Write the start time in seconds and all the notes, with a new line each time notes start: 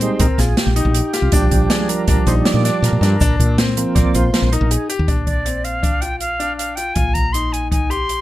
Already playing: C4
0.01 G3 G#3 D#4 C5, closed hi-hat
0.19 A#1 C4 A#4, kick, closed hi-hat
0.38 A#1 F4 G#4, snare, closed hi-hat, shaker
0.57 G4, snare, closed hi-hat
0.66 A#1
0.76 D#4, closed hi-hat
0.85 A#1
0.94 closed hi-hat, shaker
1.13 F4 G4, snare, closed hi-hat
1.22 C2
1.32 A#1 F3 G3 D4 G4, kick, closed hi-hat, shaker
1.51 A#1, kick, closed hi-hat
1.70 D4 G#4, snare, closed hi-hat
1.89 A#4, closed hi-hat
2.08 A#1 D4, kick, closed hi-hat
2.27 A#1 D#4 C5, closed hi-hat, shaker
2.45 D5, snare, closed hi-hat
2.54 A#2
2.65 D4, snare, closed hi-hat
2.82 A#2 A#4, snare, closed hi-hat, shaker
2.92 A#2
3.01 G2 D4, snare, closed hi-hat
3.21 A#1 D4, kick, closed hi-hat, shaker
3.39 A#2, kick, closed hi-hat
3.58 C4, snare, closed hi-hat
3.77 F3 A#3 C4, closed hi-hat
3.95 A#1 C4 D5, kick, snare, closed hi-hat
4.14 A#1 F4 C5, closed hi-hat, shaker
4.32 F3 A#3 C4, snare, closed hi-hat
4.42 A#1
4.52 D#4 A#4, closed hi-hat
4.61 A#1
4.71 G#4, closed hi-hat
4.90 G4, closed hi-hat
4.99 D#2
5.08 A#1 D4, kick, closed hi-hat
5.26 D5, kick, closed hi-hat
5.45 C4, closed hi-hat
5.64 F5, closed hi-hat
5.83 D4, kick, closed hi-hat
6.01 F4 G5, closed hi-hat
6.20 F5, closed hi-hat
6.40 D4, closed hi-hat
6.57 F5, closed hi-hat
6.76 F4 G5, closed hi-hat
6.94 A#1 F4 G#5, kick, closed hi-hat
7.14 A#5, kick, closed hi-hat
7.33 D#4 C6, closed hi-hat
7.53 G#5, closed hi-hat
7.71 D#4 G#5, kick, closed hi-hat
7.90 G4 C6, closed hi-hat
8.09 closed hi-hat